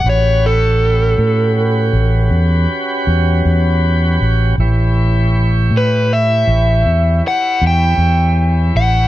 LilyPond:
<<
  \new Staff \with { instrumentName = "Overdriven electric guitar" } { \time 12/8 \key a \major \tempo 4. = 53 cis''8 a'2. r2 r8 | r4. b'8 e''4. fis''8 g''4. fis''8 | }
  \new Staff \with { instrumentName = "Tonewheel organ" } { \time 12/8 \key a \major <cis' fis' g' b'>1. | <e' g' b' cis''>1. | }
  \new Staff \with { instrumentName = "Fretless electric bass" } { \clef bass \time 12/8 \key a \major a,,4. a,4 a,,8 e,8 r8 e,8 e,4 a,,8 | a,,4. a,4 a,,8 e,8 r8 e,8 e,4 a,,8 | }
>>